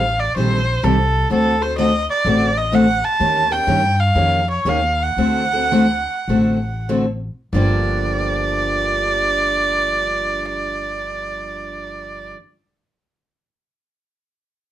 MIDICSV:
0, 0, Header, 1, 4, 480
1, 0, Start_track
1, 0, Key_signature, -2, "minor"
1, 0, Tempo, 474684
1, 1319, Time_signature, 4, 2, 24, 8
1, 4203, Tempo, 505902
1, 5163, Tempo, 552995
1, 6123, Tempo, 626305
1, 7083, Tempo, 675676
1, 12187, End_track
2, 0, Start_track
2, 0, Title_t, "Erhu"
2, 0, Program_c, 0, 110
2, 0, Note_on_c, 0, 77, 94
2, 202, Note_on_c, 0, 74, 86
2, 217, Note_off_c, 0, 77, 0
2, 365, Note_off_c, 0, 74, 0
2, 372, Note_on_c, 0, 72, 92
2, 851, Note_on_c, 0, 69, 84
2, 866, Note_off_c, 0, 72, 0
2, 1324, Note_off_c, 0, 69, 0
2, 1337, Note_on_c, 0, 69, 92
2, 1640, Note_on_c, 0, 72, 84
2, 1656, Note_off_c, 0, 69, 0
2, 1796, Note_off_c, 0, 72, 0
2, 1802, Note_on_c, 0, 75, 86
2, 2091, Note_off_c, 0, 75, 0
2, 2124, Note_on_c, 0, 74, 92
2, 2603, Note_on_c, 0, 75, 82
2, 2619, Note_off_c, 0, 74, 0
2, 2777, Note_on_c, 0, 78, 92
2, 2792, Note_off_c, 0, 75, 0
2, 3079, Note_on_c, 0, 81, 95
2, 3094, Note_off_c, 0, 78, 0
2, 3560, Note_on_c, 0, 79, 96
2, 3575, Note_off_c, 0, 81, 0
2, 4049, Note_on_c, 0, 77, 89
2, 4064, Note_off_c, 0, 79, 0
2, 4517, Note_off_c, 0, 77, 0
2, 4532, Note_on_c, 0, 73, 78
2, 4712, Note_on_c, 0, 77, 88
2, 4726, Note_off_c, 0, 73, 0
2, 5027, Note_on_c, 0, 78, 88
2, 5042, Note_off_c, 0, 77, 0
2, 6600, Note_off_c, 0, 78, 0
2, 7098, Note_on_c, 0, 74, 90
2, 10496, Note_off_c, 0, 74, 0
2, 12187, End_track
3, 0, Start_track
3, 0, Title_t, "Steel-string acoustic guitar"
3, 0, Program_c, 1, 25
3, 371, Note_on_c, 1, 51, 67
3, 372, Note_on_c, 1, 55, 63
3, 378, Note_on_c, 1, 60, 65
3, 382, Note_on_c, 1, 67, 65
3, 384, Note_on_c, 1, 69, 67
3, 592, Note_off_c, 1, 51, 0
3, 592, Note_off_c, 1, 55, 0
3, 595, Note_off_c, 1, 60, 0
3, 597, Note_off_c, 1, 67, 0
3, 598, Note_off_c, 1, 69, 0
3, 843, Note_on_c, 1, 51, 82
3, 846, Note_on_c, 1, 55, 80
3, 850, Note_on_c, 1, 60, 93
3, 851, Note_on_c, 1, 67, 82
3, 851, Note_on_c, 1, 69, 86
3, 961, Note_off_c, 1, 51, 0
3, 962, Note_off_c, 1, 55, 0
3, 964, Note_off_c, 1, 60, 0
3, 965, Note_off_c, 1, 67, 0
3, 965, Note_off_c, 1, 69, 0
3, 1312, Note_on_c, 1, 50, 65
3, 1319, Note_on_c, 1, 57, 65
3, 1325, Note_on_c, 1, 60, 65
3, 1325, Note_on_c, 1, 69, 69
3, 1327, Note_on_c, 1, 66, 69
3, 1540, Note_off_c, 1, 50, 0
3, 1544, Note_off_c, 1, 57, 0
3, 1547, Note_off_c, 1, 60, 0
3, 1547, Note_off_c, 1, 69, 0
3, 1548, Note_off_c, 1, 66, 0
3, 1630, Note_on_c, 1, 69, 51
3, 1644, Note_on_c, 1, 66, 48
3, 1656, Note_on_c, 1, 60, 46
3, 1790, Note_off_c, 1, 69, 0
3, 1794, Note_off_c, 1, 66, 0
3, 1795, Note_off_c, 1, 60, 0
3, 1801, Note_on_c, 1, 50, 78
3, 1801, Note_on_c, 1, 57, 74
3, 1807, Note_on_c, 1, 60, 87
3, 1807, Note_on_c, 1, 66, 91
3, 1814, Note_on_c, 1, 69, 86
3, 1918, Note_off_c, 1, 50, 0
3, 1918, Note_off_c, 1, 57, 0
3, 1921, Note_off_c, 1, 60, 0
3, 1921, Note_off_c, 1, 66, 0
3, 1925, Note_off_c, 1, 69, 0
3, 2276, Note_on_c, 1, 50, 62
3, 2278, Note_on_c, 1, 57, 61
3, 2285, Note_on_c, 1, 60, 70
3, 2290, Note_on_c, 1, 66, 72
3, 2291, Note_on_c, 1, 69, 79
3, 2501, Note_off_c, 1, 50, 0
3, 2502, Note_off_c, 1, 57, 0
3, 2506, Note_off_c, 1, 60, 0
3, 2508, Note_off_c, 1, 66, 0
3, 2509, Note_off_c, 1, 69, 0
3, 2749, Note_on_c, 1, 50, 80
3, 2756, Note_on_c, 1, 57, 81
3, 2762, Note_on_c, 1, 60, 87
3, 2762, Note_on_c, 1, 66, 87
3, 2764, Note_on_c, 1, 69, 87
3, 2871, Note_off_c, 1, 50, 0
3, 2874, Note_off_c, 1, 57, 0
3, 2877, Note_off_c, 1, 60, 0
3, 2877, Note_off_c, 1, 66, 0
3, 2878, Note_off_c, 1, 69, 0
3, 3230, Note_on_c, 1, 51, 62
3, 3236, Note_on_c, 1, 58, 67
3, 3240, Note_on_c, 1, 67, 68
3, 3241, Note_on_c, 1, 61, 71
3, 3245, Note_on_c, 1, 70, 72
3, 3457, Note_off_c, 1, 51, 0
3, 3460, Note_off_c, 1, 58, 0
3, 3462, Note_off_c, 1, 61, 0
3, 3462, Note_off_c, 1, 67, 0
3, 3465, Note_off_c, 1, 70, 0
3, 3545, Note_on_c, 1, 70, 54
3, 3555, Note_on_c, 1, 67, 51
3, 3562, Note_on_c, 1, 61, 43
3, 3702, Note_off_c, 1, 61, 0
3, 3704, Note_off_c, 1, 67, 0
3, 3706, Note_off_c, 1, 70, 0
3, 3709, Note_on_c, 1, 51, 77
3, 3713, Note_on_c, 1, 58, 85
3, 3714, Note_on_c, 1, 61, 77
3, 3716, Note_on_c, 1, 67, 90
3, 3720, Note_on_c, 1, 70, 88
3, 3832, Note_off_c, 1, 51, 0
3, 3834, Note_off_c, 1, 58, 0
3, 3835, Note_off_c, 1, 61, 0
3, 3836, Note_off_c, 1, 67, 0
3, 3838, Note_off_c, 1, 70, 0
3, 4199, Note_on_c, 1, 51, 62
3, 4201, Note_on_c, 1, 58, 60
3, 4203, Note_on_c, 1, 61, 65
3, 4208, Note_on_c, 1, 67, 74
3, 4212, Note_on_c, 1, 70, 61
3, 4421, Note_off_c, 1, 51, 0
3, 4422, Note_off_c, 1, 58, 0
3, 4423, Note_off_c, 1, 61, 0
3, 4426, Note_off_c, 1, 67, 0
3, 4427, Note_off_c, 1, 70, 0
3, 4676, Note_on_c, 1, 51, 78
3, 4677, Note_on_c, 1, 58, 78
3, 4682, Note_on_c, 1, 61, 88
3, 4684, Note_on_c, 1, 67, 92
3, 4692, Note_on_c, 1, 70, 82
3, 4795, Note_off_c, 1, 51, 0
3, 4796, Note_off_c, 1, 58, 0
3, 4798, Note_off_c, 1, 61, 0
3, 4799, Note_off_c, 1, 67, 0
3, 4803, Note_off_c, 1, 70, 0
3, 5172, Note_on_c, 1, 50, 60
3, 5174, Note_on_c, 1, 57, 55
3, 5175, Note_on_c, 1, 60, 68
3, 5178, Note_on_c, 1, 66, 68
3, 5179, Note_on_c, 1, 69, 65
3, 5384, Note_off_c, 1, 50, 0
3, 5386, Note_off_c, 1, 57, 0
3, 5386, Note_off_c, 1, 60, 0
3, 5388, Note_off_c, 1, 66, 0
3, 5388, Note_off_c, 1, 69, 0
3, 5479, Note_on_c, 1, 69, 53
3, 5492, Note_on_c, 1, 66, 44
3, 5499, Note_on_c, 1, 60, 41
3, 5630, Note_off_c, 1, 69, 0
3, 5636, Note_off_c, 1, 66, 0
3, 5640, Note_off_c, 1, 60, 0
3, 5644, Note_on_c, 1, 50, 74
3, 5645, Note_on_c, 1, 57, 79
3, 5649, Note_on_c, 1, 60, 72
3, 5653, Note_on_c, 1, 66, 78
3, 5658, Note_on_c, 1, 69, 78
3, 5757, Note_off_c, 1, 50, 0
3, 5758, Note_off_c, 1, 57, 0
3, 5760, Note_off_c, 1, 60, 0
3, 5762, Note_off_c, 1, 66, 0
3, 5764, Note_off_c, 1, 69, 0
3, 6134, Note_on_c, 1, 50, 58
3, 6135, Note_on_c, 1, 57, 59
3, 6142, Note_on_c, 1, 60, 60
3, 6143, Note_on_c, 1, 66, 65
3, 6145, Note_on_c, 1, 69, 65
3, 6342, Note_off_c, 1, 50, 0
3, 6343, Note_off_c, 1, 57, 0
3, 6346, Note_off_c, 1, 60, 0
3, 6347, Note_off_c, 1, 66, 0
3, 6348, Note_off_c, 1, 69, 0
3, 6594, Note_on_c, 1, 50, 75
3, 6596, Note_on_c, 1, 57, 76
3, 6599, Note_on_c, 1, 66, 86
3, 6600, Note_on_c, 1, 60, 74
3, 6602, Note_on_c, 1, 69, 88
3, 6710, Note_off_c, 1, 50, 0
3, 6711, Note_off_c, 1, 57, 0
3, 6712, Note_off_c, 1, 66, 0
3, 6713, Note_off_c, 1, 60, 0
3, 6714, Note_off_c, 1, 69, 0
3, 7083, Note_on_c, 1, 43, 78
3, 7092, Note_on_c, 1, 50, 68
3, 7096, Note_on_c, 1, 53, 72
3, 7100, Note_on_c, 1, 58, 80
3, 7107, Note_on_c, 1, 62, 83
3, 7109, Note_on_c, 1, 67, 82
3, 10510, Note_off_c, 1, 43, 0
3, 10519, Note_off_c, 1, 50, 0
3, 10523, Note_off_c, 1, 53, 0
3, 10527, Note_off_c, 1, 58, 0
3, 10534, Note_off_c, 1, 62, 0
3, 10536, Note_off_c, 1, 67, 0
3, 12187, End_track
4, 0, Start_track
4, 0, Title_t, "Upright bass"
4, 0, Program_c, 2, 32
4, 0, Note_on_c, 2, 33, 78
4, 290, Note_off_c, 2, 33, 0
4, 365, Note_on_c, 2, 34, 80
4, 770, Note_off_c, 2, 34, 0
4, 841, Note_on_c, 2, 36, 77
4, 1247, Note_off_c, 2, 36, 0
4, 1319, Note_on_c, 2, 38, 81
4, 2084, Note_off_c, 2, 38, 0
4, 2272, Note_on_c, 2, 33, 84
4, 3039, Note_off_c, 2, 33, 0
4, 3233, Note_on_c, 2, 39, 87
4, 3618, Note_off_c, 2, 39, 0
4, 3713, Note_on_c, 2, 43, 80
4, 4129, Note_off_c, 2, 43, 0
4, 4197, Note_on_c, 2, 41, 78
4, 4600, Note_off_c, 2, 41, 0
4, 4672, Note_on_c, 2, 39, 82
4, 5088, Note_off_c, 2, 39, 0
4, 5162, Note_on_c, 2, 38, 79
4, 5930, Note_off_c, 2, 38, 0
4, 6125, Note_on_c, 2, 33, 77
4, 6893, Note_off_c, 2, 33, 0
4, 7083, Note_on_c, 2, 31, 85
4, 10482, Note_off_c, 2, 31, 0
4, 12187, End_track
0, 0, End_of_file